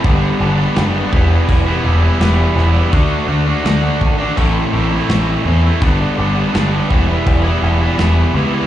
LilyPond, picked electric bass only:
\new Staff \with { instrumentName = "Picked electric bass" } { \clef bass \time 4/4 \key e \minor \tempo 4 = 83 g,,8 g,,8 fis,,8 e,,8 e,,8 e,,8 e,,8 e,,8 | d,8 d,8 d,8 gis,,8 a,,8 a,,8 a,,8 e,8 | g,,8 g,,8 g,,8 e,,8 e,,8 e,,8 e,,8 cis,8 | }